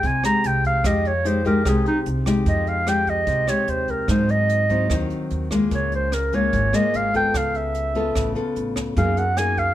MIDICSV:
0, 0, Header, 1, 5, 480
1, 0, Start_track
1, 0, Key_signature, -4, "minor"
1, 0, Tempo, 406229
1, 996, Time_signature, 4, 2, 24, 8
1, 11510, End_track
2, 0, Start_track
2, 0, Title_t, "Clarinet"
2, 0, Program_c, 0, 71
2, 71, Note_on_c, 0, 80, 90
2, 289, Note_off_c, 0, 80, 0
2, 296, Note_on_c, 0, 82, 112
2, 548, Note_on_c, 0, 79, 95
2, 566, Note_off_c, 0, 82, 0
2, 772, Note_off_c, 0, 79, 0
2, 785, Note_on_c, 0, 77, 101
2, 1025, Note_on_c, 0, 75, 84
2, 1043, Note_off_c, 0, 77, 0
2, 1265, Note_on_c, 0, 73, 85
2, 1282, Note_off_c, 0, 75, 0
2, 1502, Note_on_c, 0, 72, 77
2, 1519, Note_off_c, 0, 73, 0
2, 1729, Note_off_c, 0, 72, 0
2, 1737, Note_on_c, 0, 70, 90
2, 1991, Note_on_c, 0, 68, 81
2, 2009, Note_off_c, 0, 70, 0
2, 2210, Note_off_c, 0, 68, 0
2, 2217, Note_on_c, 0, 63, 98
2, 2355, Note_off_c, 0, 63, 0
2, 2937, Note_on_c, 0, 75, 80
2, 3171, Note_on_c, 0, 77, 89
2, 3188, Note_off_c, 0, 75, 0
2, 3410, Note_on_c, 0, 79, 93
2, 3428, Note_off_c, 0, 77, 0
2, 3658, Note_on_c, 0, 75, 97
2, 3676, Note_off_c, 0, 79, 0
2, 4128, Note_on_c, 0, 73, 92
2, 4146, Note_off_c, 0, 75, 0
2, 4374, Note_on_c, 0, 72, 82
2, 4392, Note_off_c, 0, 73, 0
2, 4615, Note_on_c, 0, 70, 79
2, 4633, Note_off_c, 0, 72, 0
2, 4839, Note_off_c, 0, 70, 0
2, 4846, Note_on_c, 0, 72, 78
2, 5090, Note_on_c, 0, 75, 93
2, 5108, Note_off_c, 0, 72, 0
2, 6044, Note_off_c, 0, 75, 0
2, 6791, Note_on_c, 0, 73, 74
2, 6999, Note_off_c, 0, 73, 0
2, 7033, Note_on_c, 0, 72, 82
2, 7255, Note_on_c, 0, 70, 81
2, 7273, Note_off_c, 0, 72, 0
2, 7502, Note_on_c, 0, 73, 92
2, 7519, Note_off_c, 0, 70, 0
2, 7973, Note_on_c, 0, 75, 95
2, 7990, Note_off_c, 0, 73, 0
2, 8225, Note_on_c, 0, 77, 95
2, 8243, Note_off_c, 0, 75, 0
2, 8451, Note_off_c, 0, 77, 0
2, 8460, Note_on_c, 0, 79, 104
2, 8712, Note_on_c, 0, 77, 90
2, 8730, Note_off_c, 0, 79, 0
2, 8938, Note_on_c, 0, 76, 90
2, 8955, Note_off_c, 0, 77, 0
2, 9887, Note_off_c, 0, 76, 0
2, 10607, Note_on_c, 0, 77, 86
2, 10851, Note_on_c, 0, 78, 87
2, 10869, Note_off_c, 0, 77, 0
2, 11079, Note_on_c, 0, 80, 94
2, 11097, Note_off_c, 0, 78, 0
2, 11324, Note_on_c, 0, 77, 98
2, 11342, Note_off_c, 0, 80, 0
2, 11510, Note_off_c, 0, 77, 0
2, 11510, End_track
3, 0, Start_track
3, 0, Title_t, "Nylon-string guitar"
3, 0, Program_c, 1, 24
3, 43, Note_on_c, 1, 48, 59
3, 283, Note_on_c, 1, 56, 62
3, 288, Note_on_c, 1, 63, 63
3, 293, Note_on_c, 1, 67, 67
3, 962, Note_off_c, 1, 56, 0
3, 963, Note_off_c, 1, 63, 0
3, 966, Note_off_c, 1, 67, 0
3, 975, Note_off_c, 1, 48, 0
3, 1001, Note_on_c, 1, 53, 56
3, 1005, Note_on_c, 1, 56, 57
3, 1009, Note_on_c, 1, 63, 53
3, 1013, Note_on_c, 1, 67, 66
3, 1309, Note_off_c, 1, 56, 0
3, 1309, Note_off_c, 1, 63, 0
3, 1313, Note_off_c, 1, 67, 0
3, 1473, Note_on_c, 1, 56, 57
3, 1478, Note_on_c, 1, 63, 59
3, 1482, Note_on_c, 1, 67, 60
3, 1676, Note_off_c, 1, 56, 0
3, 1679, Note_off_c, 1, 63, 0
3, 1680, Note_off_c, 1, 67, 0
3, 1712, Note_on_c, 1, 56, 66
3, 1722, Note_on_c, 1, 63, 67
3, 1723, Note_on_c, 1, 67, 74
3, 1917, Note_off_c, 1, 56, 0
3, 1919, Note_off_c, 1, 63, 0
3, 1921, Note_off_c, 1, 67, 0
3, 1935, Note_off_c, 1, 53, 0
3, 1953, Note_on_c, 1, 56, 51
3, 1954, Note_on_c, 1, 48, 58
3, 1958, Note_on_c, 1, 63, 57
3, 1964, Note_on_c, 1, 67, 61
3, 2431, Note_off_c, 1, 56, 0
3, 2434, Note_off_c, 1, 63, 0
3, 2436, Note_off_c, 1, 67, 0
3, 2673, Note_on_c, 1, 56, 61
3, 2680, Note_on_c, 1, 63, 65
3, 2685, Note_on_c, 1, 67, 67
3, 2891, Note_off_c, 1, 48, 0
3, 2907, Note_on_c, 1, 53, 54
3, 3357, Note_off_c, 1, 56, 0
3, 3359, Note_off_c, 1, 63, 0
3, 3359, Note_off_c, 1, 67, 0
3, 3394, Note_on_c, 1, 56, 50
3, 3400, Note_on_c, 1, 63, 53
3, 3406, Note_on_c, 1, 67, 54
3, 3848, Note_off_c, 1, 53, 0
3, 3864, Note_on_c, 1, 48, 53
3, 4077, Note_off_c, 1, 56, 0
3, 4080, Note_off_c, 1, 63, 0
3, 4083, Note_off_c, 1, 67, 0
3, 4117, Note_on_c, 1, 56, 61
3, 4120, Note_on_c, 1, 63, 56
3, 4126, Note_on_c, 1, 67, 60
3, 4799, Note_off_c, 1, 56, 0
3, 4799, Note_off_c, 1, 63, 0
3, 4803, Note_off_c, 1, 67, 0
3, 4807, Note_off_c, 1, 48, 0
3, 4824, Note_on_c, 1, 44, 56
3, 4832, Note_on_c, 1, 54, 53
3, 4833, Note_on_c, 1, 60, 51
3, 4843, Note_on_c, 1, 63, 65
3, 5515, Note_off_c, 1, 54, 0
3, 5517, Note_off_c, 1, 60, 0
3, 5519, Note_off_c, 1, 63, 0
3, 5545, Note_on_c, 1, 54, 61
3, 5555, Note_on_c, 1, 60, 64
3, 5559, Note_on_c, 1, 63, 62
3, 5754, Note_off_c, 1, 54, 0
3, 5756, Note_off_c, 1, 60, 0
3, 5760, Note_off_c, 1, 63, 0
3, 5767, Note_off_c, 1, 44, 0
3, 5791, Note_on_c, 1, 51, 54
3, 5799, Note_on_c, 1, 54, 52
3, 5800, Note_on_c, 1, 60, 58
3, 5808, Note_on_c, 1, 63, 62
3, 6478, Note_off_c, 1, 54, 0
3, 6481, Note_off_c, 1, 60, 0
3, 6482, Note_off_c, 1, 63, 0
3, 6513, Note_on_c, 1, 56, 62
3, 6519, Note_on_c, 1, 58, 64
3, 6522, Note_on_c, 1, 65, 58
3, 6732, Note_off_c, 1, 51, 0
3, 6761, Note_on_c, 1, 49, 56
3, 7197, Note_off_c, 1, 56, 0
3, 7199, Note_off_c, 1, 58, 0
3, 7202, Note_off_c, 1, 65, 0
3, 7482, Note_on_c, 1, 56, 67
3, 7488, Note_on_c, 1, 58, 66
3, 7491, Note_on_c, 1, 65, 70
3, 7695, Note_off_c, 1, 49, 0
3, 7717, Note_on_c, 1, 44, 56
3, 7922, Note_off_c, 1, 56, 0
3, 7925, Note_off_c, 1, 58, 0
3, 7925, Note_off_c, 1, 65, 0
3, 7953, Note_on_c, 1, 56, 64
3, 7959, Note_on_c, 1, 58, 63
3, 7964, Note_on_c, 1, 65, 65
3, 8397, Note_off_c, 1, 56, 0
3, 8400, Note_off_c, 1, 58, 0
3, 8402, Note_off_c, 1, 65, 0
3, 8435, Note_on_c, 1, 59, 55
3, 8443, Note_on_c, 1, 65, 57
3, 8449, Note_on_c, 1, 69, 60
3, 8653, Note_off_c, 1, 44, 0
3, 8677, Note_on_c, 1, 49, 52
3, 9358, Note_off_c, 1, 59, 0
3, 9362, Note_off_c, 1, 65, 0
3, 9363, Note_off_c, 1, 69, 0
3, 9402, Note_on_c, 1, 59, 67
3, 9407, Note_on_c, 1, 65, 62
3, 9411, Note_on_c, 1, 69, 66
3, 9613, Note_off_c, 1, 49, 0
3, 9635, Note_on_c, 1, 49, 55
3, 9841, Note_off_c, 1, 59, 0
3, 9844, Note_off_c, 1, 65, 0
3, 9845, Note_off_c, 1, 69, 0
3, 9870, Note_on_c, 1, 59, 58
3, 9877, Note_on_c, 1, 65, 57
3, 9883, Note_on_c, 1, 69, 61
3, 10554, Note_off_c, 1, 59, 0
3, 10558, Note_off_c, 1, 65, 0
3, 10561, Note_off_c, 1, 69, 0
3, 10571, Note_off_c, 1, 49, 0
3, 10598, Note_on_c, 1, 54, 54
3, 10601, Note_on_c, 1, 58, 54
3, 10603, Note_on_c, 1, 63, 52
3, 10608, Note_on_c, 1, 68, 54
3, 10906, Note_off_c, 1, 58, 0
3, 10909, Note_off_c, 1, 63, 0
3, 10910, Note_off_c, 1, 68, 0
3, 11074, Note_on_c, 1, 58, 58
3, 11081, Note_on_c, 1, 63, 55
3, 11088, Note_on_c, 1, 68, 53
3, 11510, Note_off_c, 1, 54, 0
3, 11510, Note_off_c, 1, 58, 0
3, 11510, Note_off_c, 1, 63, 0
3, 11510, Note_off_c, 1, 68, 0
3, 11510, End_track
4, 0, Start_track
4, 0, Title_t, "Upright bass"
4, 0, Program_c, 2, 32
4, 42, Note_on_c, 2, 36, 101
4, 262, Note_off_c, 2, 36, 0
4, 527, Note_on_c, 2, 36, 90
4, 968, Note_off_c, 2, 36, 0
4, 996, Note_on_c, 2, 41, 103
4, 1909, Note_off_c, 2, 41, 0
4, 1957, Note_on_c, 2, 36, 104
4, 2180, Note_off_c, 2, 36, 0
4, 2436, Note_on_c, 2, 36, 93
4, 2883, Note_off_c, 2, 36, 0
4, 2908, Note_on_c, 2, 41, 104
4, 3825, Note_off_c, 2, 41, 0
4, 3865, Note_on_c, 2, 36, 97
4, 4094, Note_off_c, 2, 36, 0
4, 4344, Note_on_c, 2, 39, 84
4, 4797, Note_off_c, 2, 39, 0
4, 4824, Note_on_c, 2, 44, 101
4, 5744, Note_off_c, 2, 44, 0
4, 5790, Note_on_c, 2, 39, 101
4, 6017, Note_off_c, 2, 39, 0
4, 6275, Note_on_c, 2, 39, 88
4, 6723, Note_off_c, 2, 39, 0
4, 6750, Note_on_c, 2, 37, 106
4, 7667, Note_off_c, 2, 37, 0
4, 7717, Note_on_c, 2, 32, 106
4, 7941, Note_off_c, 2, 32, 0
4, 8205, Note_on_c, 2, 32, 79
4, 8648, Note_off_c, 2, 32, 0
4, 8675, Note_on_c, 2, 37, 102
4, 9589, Note_off_c, 2, 37, 0
4, 9634, Note_on_c, 2, 33, 96
4, 9858, Note_off_c, 2, 33, 0
4, 10116, Note_on_c, 2, 33, 82
4, 10562, Note_off_c, 2, 33, 0
4, 10596, Note_on_c, 2, 42, 105
4, 11507, Note_off_c, 2, 42, 0
4, 11510, End_track
5, 0, Start_track
5, 0, Title_t, "Drums"
5, 38, Note_on_c, 9, 36, 55
5, 40, Note_on_c, 9, 42, 42
5, 156, Note_off_c, 9, 36, 0
5, 158, Note_off_c, 9, 42, 0
5, 279, Note_on_c, 9, 37, 59
5, 279, Note_on_c, 9, 42, 26
5, 397, Note_off_c, 9, 37, 0
5, 397, Note_off_c, 9, 42, 0
5, 519, Note_on_c, 9, 42, 46
5, 637, Note_off_c, 9, 42, 0
5, 757, Note_on_c, 9, 36, 24
5, 760, Note_on_c, 9, 42, 30
5, 875, Note_off_c, 9, 36, 0
5, 878, Note_off_c, 9, 42, 0
5, 996, Note_on_c, 9, 37, 55
5, 996, Note_on_c, 9, 42, 44
5, 997, Note_on_c, 9, 36, 59
5, 1114, Note_off_c, 9, 37, 0
5, 1114, Note_off_c, 9, 42, 0
5, 1115, Note_off_c, 9, 36, 0
5, 1241, Note_on_c, 9, 42, 29
5, 1359, Note_off_c, 9, 42, 0
5, 1481, Note_on_c, 9, 42, 43
5, 1599, Note_off_c, 9, 42, 0
5, 1716, Note_on_c, 9, 36, 24
5, 1721, Note_on_c, 9, 42, 29
5, 1835, Note_off_c, 9, 36, 0
5, 1840, Note_off_c, 9, 42, 0
5, 1955, Note_on_c, 9, 36, 56
5, 1955, Note_on_c, 9, 37, 54
5, 1955, Note_on_c, 9, 42, 42
5, 2073, Note_off_c, 9, 36, 0
5, 2073, Note_off_c, 9, 37, 0
5, 2073, Note_off_c, 9, 42, 0
5, 2198, Note_on_c, 9, 42, 25
5, 2316, Note_off_c, 9, 42, 0
5, 2432, Note_on_c, 9, 42, 44
5, 2551, Note_off_c, 9, 42, 0
5, 2670, Note_on_c, 9, 36, 25
5, 2672, Note_on_c, 9, 37, 58
5, 2672, Note_on_c, 9, 42, 28
5, 2788, Note_off_c, 9, 36, 0
5, 2790, Note_off_c, 9, 37, 0
5, 2790, Note_off_c, 9, 42, 0
5, 2909, Note_on_c, 9, 36, 54
5, 2909, Note_on_c, 9, 42, 39
5, 3027, Note_off_c, 9, 36, 0
5, 3027, Note_off_c, 9, 42, 0
5, 3153, Note_on_c, 9, 42, 25
5, 3271, Note_off_c, 9, 42, 0
5, 3389, Note_on_c, 9, 37, 53
5, 3389, Note_on_c, 9, 42, 37
5, 3507, Note_off_c, 9, 37, 0
5, 3507, Note_off_c, 9, 42, 0
5, 3625, Note_on_c, 9, 36, 24
5, 3628, Note_on_c, 9, 42, 26
5, 3744, Note_off_c, 9, 36, 0
5, 3746, Note_off_c, 9, 42, 0
5, 3861, Note_on_c, 9, 42, 38
5, 3864, Note_on_c, 9, 36, 54
5, 3979, Note_off_c, 9, 42, 0
5, 3982, Note_off_c, 9, 36, 0
5, 4106, Note_on_c, 9, 37, 56
5, 4106, Note_on_c, 9, 42, 26
5, 4224, Note_off_c, 9, 37, 0
5, 4224, Note_off_c, 9, 42, 0
5, 4343, Note_on_c, 9, 42, 42
5, 4461, Note_off_c, 9, 42, 0
5, 4585, Note_on_c, 9, 36, 21
5, 4585, Note_on_c, 9, 42, 26
5, 4703, Note_off_c, 9, 36, 0
5, 4703, Note_off_c, 9, 42, 0
5, 4822, Note_on_c, 9, 37, 54
5, 4822, Note_on_c, 9, 42, 39
5, 4824, Note_on_c, 9, 36, 55
5, 4940, Note_off_c, 9, 37, 0
5, 4940, Note_off_c, 9, 42, 0
5, 4942, Note_off_c, 9, 36, 0
5, 5066, Note_on_c, 9, 42, 27
5, 5184, Note_off_c, 9, 42, 0
5, 5308, Note_on_c, 9, 42, 42
5, 5426, Note_off_c, 9, 42, 0
5, 5549, Note_on_c, 9, 36, 23
5, 5549, Note_on_c, 9, 42, 26
5, 5667, Note_off_c, 9, 36, 0
5, 5667, Note_off_c, 9, 42, 0
5, 5787, Note_on_c, 9, 37, 55
5, 5787, Note_on_c, 9, 42, 38
5, 5789, Note_on_c, 9, 36, 50
5, 5905, Note_off_c, 9, 37, 0
5, 5905, Note_off_c, 9, 42, 0
5, 5907, Note_off_c, 9, 36, 0
5, 6028, Note_on_c, 9, 42, 25
5, 6146, Note_off_c, 9, 42, 0
5, 6268, Note_on_c, 9, 42, 39
5, 6386, Note_off_c, 9, 42, 0
5, 6509, Note_on_c, 9, 37, 55
5, 6509, Note_on_c, 9, 42, 27
5, 6511, Note_on_c, 9, 36, 24
5, 6627, Note_off_c, 9, 37, 0
5, 6627, Note_off_c, 9, 42, 0
5, 6629, Note_off_c, 9, 36, 0
5, 6746, Note_on_c, 9, 42, 38
5, 6752, Note_on_c, 9, 36, 55
5, 6864, Note_off_c, 9, 42, 0
5, 6871, Note_off_c, 9, 36, 0
5, 6991, Note_on_c, 9, 42, 26
5, 7109, Note_off_c, 9, 42, 0
5, 7233, Note_on_c, 9, 37, 56
5, 7233, Note_on_c, 9, 42, 40
5, 7351, Note_off_c, 9, 37, 0
5, 7351, Note_off_c, 9, 42, 0
5, 7474, Note_on_c, 9, 42, 25
5, 7475, Note_on_c, 9, 36, 23
5, 7592, Note_off_c, 9, 42, 0
5, 7593, Note_off_c, 9, 36, 0
5, 7714, Note_on_c, 9, 42, 37
5, 7716, Note_on_c, 9, 36, 49
5, 7832, Note_off_c, 9, 42, 0
5, 7834, Note_off_c, 9, 36, 0
5, 7954, Note_on_c, 9, 37, 52
5, 7954, Note_on_c, 9, 42, 25
5, 8073, Note_off_c, 9, 37, 0
5, 8073, Note_off_c, 9, 42, 0
5, 8196, Note_on_c, 9, 42, 42
5, 8314, Note_off_c, 9, 42, 0
5, 8436, Note_on_c, 9, 36, 23
5, 8438, Note_on_c, 9, 42, 26
5, 8555, Note_off_c, 9, 36, 0
5, 8557, Note_off_c, 9, 42, 0
5, 8677, Note_on_c, 9, 36, 59
5, 8677, Note_on_c, 9, 37, 56
5, 8677, Note_on_c, 9, 42, 41
5, 8795, Note_off_c, 9, 36, 0
5, 8795, Note_off_c, 9, 37, 0
5, 8795, Note_off_c, 9, 42, 0
5, 8916, Note_on_c, 9, 42, 28
5, 9034, Note_off_c, 9, 42, 0
5, 9151, Note_on_c, 9, 42, 40
5, 9269, Note_off_c, 9, 42, 0
5, 9393, Note_on_c, 9, 42, 26
5, 9395, Note_on_c, 9, 36, 24
5, 9511, Note_off_c, 9, 42, 0
5, 9514, Note_off_c, 9, 36, 0
5, 9635, Note_on_c, 9, 37, 53
5, 9635, Note_on_c, 9, 42, 39
5, 9636, Note_on_c, 9, 36, 53
5, 9753, Note_off_c, 9, 37, 0
5, 9753, Note_off_c, 9, 42, 0
5, 9754, Note_off_c, 9, 36, 0
5, 9875, Note_on_c, 9, 42, 26
5, 9994, Note_off_c, 9, 42, 0
5, 10114, Note_on_c, 9, 42, 39
5, 10233, Note_off_c, 9, 42, 0
5, 10351, Note_on_c, 9, 37, 59
5, 10351, Note_on_c, 9, 42, 25
5, 10354, Note_on_c, 9, 36, 23
5, 10469, Note_off_c, 9, 37, 0
5, 10469, Note_off_c, 9, 42, 0
5, 10472, Note_off_c, 9, 36, 0
5, 10594, Note_on_c, 9, 36, 53
5, 10594, Note_on_c, 9, 42, 39
5, 10712, Note_off_c, 9, 36, 0
5, 10712, Note_off_c, 9, 42, 0
5, 10836, Note_on_c, 9, 42, 27
5, 10954, Note_off_c, 9, 42, 0
5, 11069, Note_on_c, 9, 37, 54
5, 11069, Note_on_c, 9, 42, 41
5, 11187, Note_off_c, 9, 37, 0
5, 11187, Note_off_c, 9, 42, 0
5, 11312, Note_on_c, 9, 42, 25
5, 11313, Note_on_c, 9, 36, 24
5, 11430, Note_off_c, 9, 42, 0
5, 11431, Note_off_c, 9, 36, 0
5, 11510, End_track
0, 0, End_of_file